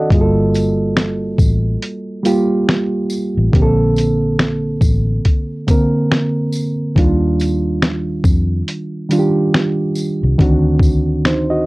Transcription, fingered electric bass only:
0.11 G1
1.39 A1
3.37 A1
3.54 A#1
4.82 A1
6.97 D#2
8.25 F2
10.23 C2
10.40 D2

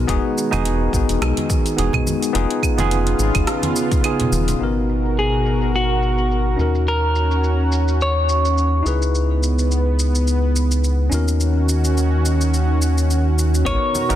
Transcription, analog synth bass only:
0.08 E1
0.53 E1
0.93 G#1
1.09 E1
1.21 B1
1.78 E1
2.35 F1
2.78 F1
3.19 G#1
3.35 F1
4.32 D#1
4.60 G#1
6.58 D#2
8.86 C#2
11.12 D#2
13.66 G#1
14.10 G#1

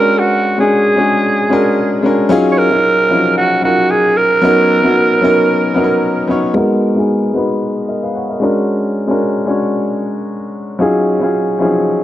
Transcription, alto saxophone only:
Already playing: A#4
0.19 F#4
0.60 G#4
2.52 C#5
2.58 A#4
3.38 F#4
3.64 F#4
3.91 G#4
4.17 A#4

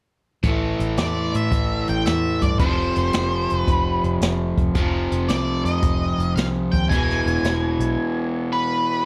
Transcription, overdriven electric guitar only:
0.43 A2 E3
0.48 A3
2.60 F2 C3 F3
4.75 F2 C3 F3
6.89 E2 B2
6.93 E3

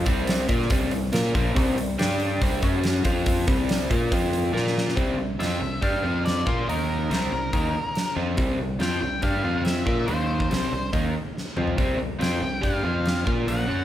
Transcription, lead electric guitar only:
5.40 E5
5.83 F5
6.25 D5
6.46 C5
6.69 A#4
8.81 G5
9.23 F5
9.65 E5
10.07 C5
12.22 G5
12.64 F5
13.48 F#5

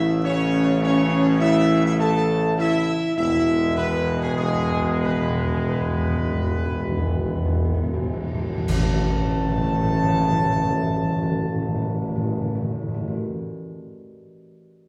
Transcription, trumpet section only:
Already playing: E5
0.24 C#5
0.83 C#5
1.40 E5
1.85 E5
1.99 A5
2.58 E5
3.17 E5
3.75 B4
4.20 G#4
4.36 G#4
5.01 B4
5.51 G#4
5.69 B4
8.68 A5

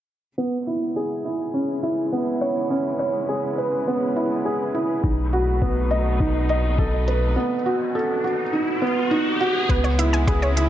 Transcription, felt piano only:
0.38 B3
0.67 E4
0.96 G#4
1.25 E4
1.54 C#4
1.83 E4
2.12 B3
2.41 C#5
2.70 C#4
2.99 C#5
3.29 G#4
3.58 B4
3.88 B3
4.16 E4
4.45 G#4
4.74 E4
5.03 D#4
5.33 F#4
5.62 B3
5.91 D#5
6.20 D#4
6.50 D#5
6.79 A4
7.08 B4
7.36 B3
7.66 F#4
7.95 A4
8.24 F#4
8.53 D#4
8.82 B3
9.11 D#4
9.40 F#4
9.69 B3
9.98 E4
10.28 G#4
10.57 E4

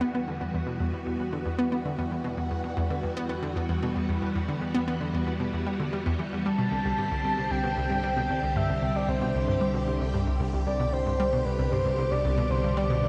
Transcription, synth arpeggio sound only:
0.01 B3
0.15 B3
0.28 D3
0.41 E2
0.54 E2
0.67 B2
0.80 E2
0.93 E2
1.06 E2
1.20 E2
1.33 D3
1.46 E2
1.59 B3
1.72 B3
1.85 D3
1.98 E2
2.11 E2
2.24 B2
2.37 E2
2.51 E2
2.64 E2
2.77 E2
2.90 D3
3.03 E2
3.17 B3
3.29 B3
3.43 D3
3.56 E2
3.69 E2
3.83 B2
3.96 E2
4.09 E2
4.22 E2
4.35 E2
4.48 D3
4.61 E2
4.75 B3
4.88 B3
5.01 D3
5.14 E2
5.27 E2
5.40 B2
5.53 E2
5.67 G3
5.80 D3
5.93 G3
6.06 E2
6.19 E3
6.33 E2
6.46 G3
6.59 B2
6.72 C2
6.85 C2
6.98 G2
7.11 C2
7.25 C2
7.38 C2
7.51 C2
7.64 B2
7.77 C2
7.90 G2
8.03 G3
8.16 B2
8.30 C2
8.43 C2
8.56 G2
8.69 C2
8.82 C2
8.95 C2
9.08 C2
9.21 B2
9.35 C2
9.48 G2
9.61 G3
9.74 B2
9.87 C2
10.00 C2
10.14 G2
10.27 C2
10.40 C2
10.53 C2
10.67 C2
10.80 B2
10.93 C2
11.06 G2
11.20 G3
11.33 B2
11.46 C2
11.59 C2
11.72 G2
11.85 C2
11.98 C2
12.12 C2
12.25 C2
12.38 B2
12.51 C2
12.64 G2
12.77 G3
12.90 B2
13.04 C2

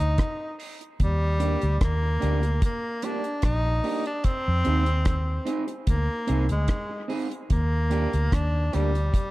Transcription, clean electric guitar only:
0.59 C4 D#4 G#4
0.80 muted clean electric guitar stroke
1.39 A#3 D4 G4
2.20 A#3 D4 G4
2.43 muted clean electric guitar stroke
3.03 A#3 D4 G4
3.65 muted clean electric guitar stroke
3.83 A#3 D4 G4
4.65 C4 D#4 G#4
5.45 C4 D#4 G#4
5.68 muted clean electric guitar stroke
6.27 C4 D#4 G#4
6.89 muted clean electric guitar stroke
7.08 C4 D#4 G#4
7.90 A#3 D4 G4
8.73 A#3 D4 G4
8.94 muted clean electric guitar stroke

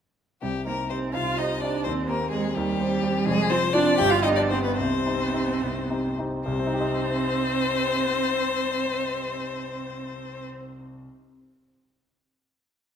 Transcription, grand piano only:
0.42 C2 C3
0.65 D#4 G4 C5
0.90 D#4 G4 C5
1.14 C2 C3
1.38 D#4 G4 C5
1.63 D#4 G4 C5
1.86 D#2 D#3
2.09 C4 G4 C5
2.33 C4 G4 C5
2.56 D#2 D#3
2.79 C4 G4 C5
3.03 C4 G4 C5
3.26 F1 F2
3.50 C4 F4 C5
3.74 C4 F4 C5
3.99 G1 G2
4.25 B3 D4 G4
4.51 B3 D4 G4
4.78 C2 C3
5.06 C4 D#4 G4
5.33 C4 D#4 G4
5.62 C2 C3
5.90 C4 D#4 G4
6.18 C4 D#4 G4
6.46 C2
6.53 C3
6.59 C4
6.67 D#4
6.74 G4
6.81 D#5

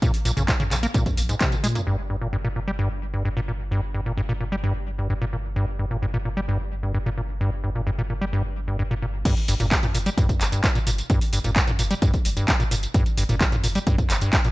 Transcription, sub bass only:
0.25 A#1
0.37 A#1
0.72 A#1
1.18 A#1
1.64 A#2
1.87 G1
9.48 G1
9.60 G1
9.94 G1
10.41 G1
10.87 G1
11.33 G1
11.45 G1
11.79 G1
12.25 G1
12.71 G1
13.18 G1
13.29 G1
13.64 G1
14.10 G1

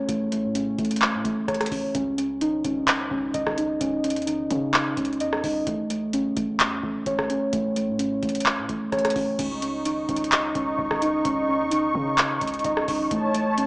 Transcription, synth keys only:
Already playing: C#4 C#5
0.08 A3
0.32 A3
0.55 C#4
0.79 A3
1.25 A3
1.48 C#5
1.71 C#4
1.95 C#4
2.18 C#4
2.41 D#4
2.65 C#4
3.11 C#4
3.34 D#5
3.58 D#4
3.81 C#4
4.04 C#4
4.27 D#4
4.50 C#4
4.97 C#4
5.21 D#5
5.44 D#4
5.67 A3
5.90 A3
6.13 C#4
6.37 A3
6.83 A3
7.07 C#5
7.30 C#4
7.52 A3
7.76 A3
7.99 C#4
8.23 A3
8.69 A3
8.92 C#5
9.16 C#4
9.39 C#4
9.62 C#4
9.85 D#4
10.09 C#4
10.55 C#4
10.78 D#5
11.02 D#4
11.25 C#4
11.48 C#4
11.71 D#4
11.95 C#4
12.42 C#4
12.65 D#5
12.88 D#4
13.12 A3
13.34 A3
13.57 C#4

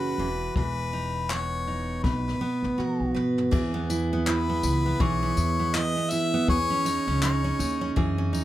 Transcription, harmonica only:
Already playing: B4
0.56 B4
1.31 C#5
2.03 B4
4.29 B4
5.02 C#5
5.75 D#5
6.11 E5
6.49 C#5
7.23 C#5

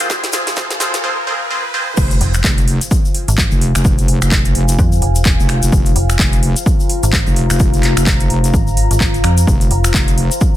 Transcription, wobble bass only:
1.97 F1
2.44 F1
3.52 F1
3.75 F1
4.22 F1
4.55 F1
5.39 F1
5.63 F1
5.72 F1
6.19 F1
7.27 F1
7.50 F1
7.97 F1
8.30 F1
9.47 F1
9.94 F1

